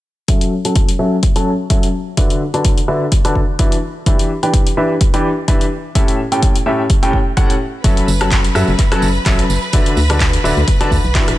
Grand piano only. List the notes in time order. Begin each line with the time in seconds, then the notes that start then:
0.28 F#3 C#4 F#4 A4 E5
0.65 F#3 C#4 F#4 A4 A5
0.99 F#3 C#4 F#4 A4 E5
1.36 F#3 C#4 F#4 A4 A5
1.70 F#3 C#4 F#4 A4 E5
2.17 D3 D4 F#4 B4 E5
2.54 D3 D4 F#4 B4 A5
2.88 D3 D4 F#4 B4 E5
3.25 D3 D4 F#4 B4 A5
3.59 E3 D4 F#4 B4 E5
4.06 E3 D4 G4 B4 E5
4.43 E3 D4 G4 B4 G5
4.77 E3 D4 G4 B4 E5
5.14 E3 D4 G4 B4 G5
5.48 E3 D4 G4 B4 E5
5.95 A2 C#4 G4 A4 E5
6.32 A2 C#4 G4 A4 G5
6.66 A2 C#4 G4 A4 E5
7.03 A2 C#4 G4 A4 G5
7.37 A2 C#4 G4 A4 F#5
7.84 F#3 C#4 F#4 A4 E5
8.21 F#3 C#4 F#4 A4 A5
8.55 F#3 C#4 F#4 A4 E5
8.92 F#3 C#4 F#4 A4 A5
9.26 F#3 C#4 F#4 A4 E5
9.73 D3 D4 F#4 B4 E5
10.10 D3 D4 F#4 B4 A5
10.44 D3 D4 F#4 B4 E5
10.81 D3 D4 F#4 B4 A5
11.15 E3 D4 F#4 B4 E5